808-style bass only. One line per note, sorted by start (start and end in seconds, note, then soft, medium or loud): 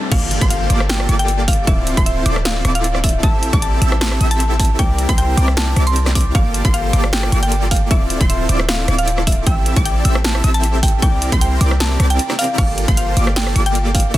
0.12 0.39 G1 loud
0.41 0.68 G1 loud
0.70 1.07 G1 loud
1.09 1.66 G1 loud
1.67 1.95 D1 loud
1.97 2.24 D1 medium
2.26 2.63 D1 medium
2.65 3.25 D1 loud
3.23 3.51 A1 loud
3.53 3.80 A1 loud
3.82 4.19 A1 medium
4.21 4.77 A1 loud
4.79 5.07 C2 loud
5.09 5.36 C2 loud
5.37 5.75 C2 loud
5.76 6.33 C2 loud
6.35 6.63 G1 loud
6.65 6.92 G1 medium
6.93 7.30 G1 medium
7.32 7.92 G1 loud
7.91 8.19 D1 loud
8.21 8.47 D1 loud
8.49 8.86 D1 loud
8.88 9.45 D1 loud
9.47 9.74 A1 loud
9.76 10.03 A1 loud
10.05 10.42 A1 medium
10.44 11.04 A1 loud
11.02 11.30 C2 loud
11.32 11.59 C2 loud
11.61 11.98 C2 loud
12.00 12.19 C2 loud
12.58 12.86 G1 loud
12.88 13.15 G1 loud
13.17 13.54 G1 loud
13.56 14.12 G1 loud
14.14 14.18 D1 medium